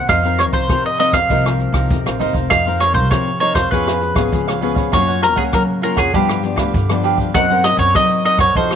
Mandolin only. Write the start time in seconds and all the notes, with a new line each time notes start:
0.09 F5
0.39 C#5
0.53 C5
0.86 D#5
1.00 D#5
1.14 F5
2.50 F5
2.80 C#5
2.94 C5
3.11 C#5
3.40 C#5
3.55 C5
3.71 B4
4.93 C#5
5.23 A#4
5.37 G#4
5.54 A#4
5.83 A#4
5.98 G#4
6.15 G4
7.35 F#5
7.64 D#5
7.79 C#5
7.96 D#5
8.25 D#5
8.40 C#5
8.57 C5